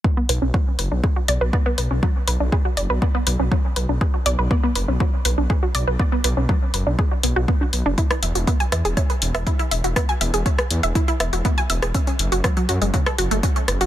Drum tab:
HH |--o---o---o---o-|--o---o---o---o-|--o---o---o---o-|--o---o---o---o-|
SD |----------------|----------------|----------------|----------------|
BD |o---o---o---o---|o---o---o---o---|o---o---o---o---|o---o---o---o---|

HH |xxoxxxoxxxoxxxox|xxoxxxoxxxoxxxox|xxoxxxoxxxoxxxox|
SD |-r----r----r----|r----r----r----r|----r----r----r-|
BD |o---o---o---o---|o---o---o---o---|o---o---o---o---|